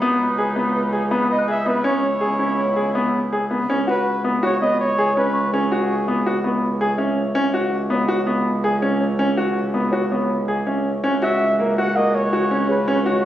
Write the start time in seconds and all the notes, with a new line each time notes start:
Already playing: B2 G#3 D#4 D#6
0.02 C#2 B3 B4
0.38 G#4
0.56 B3
0.75 B4
0.93 G#4
1.11 B3 B4 B5
1.25 D#6
1.31 D#5
1.39 F#6
1.48 G#4 E5
1.66 B3 B4
1.84 C#2 C#3 B3 C#4 E4 C#5
2.21 G#4
2.39 C#4
2.76 G#4
2.95 B3
3.33 G#4
3.51 B3
3.70 C#2 C#4
3.87 F#4 B4 F#5
4.24 B3
4.43 F#4 C#5
4.61 B3 D#5
4.80 C#5
4.98 G#4
5.17 C#4 B4
5.33 C#6
5.54 C#4 G#4
5.72 F#4
6.08 B3
6.26 F#4
6.44 B3
6.81 G#4
6.98 C#4 E5
7.35 C#2 C#4
7.54 F#4
7.90 B3 C#5
8.08 F#4
8.27 B3
8.64 G#4
8.82 C#4
9.01 C#5
9.19 C#4
9.37 F#4
9.74 B3
9.92 F#4 C#5
10.12 B3
10.48 G#4
10.67 C#4 E5
11.04 C#2 C#3 A#3 C#4 F#4
11.22 F#4 E5
11.41 E5
11.59 A#3
11.78 F#4 F#5
11.96 A#3 D#5
12.15 C#5
12.33 F#4
12.51 C#4
12.68 G#4 B4
12.88 C#4 C#5
13.06 F#4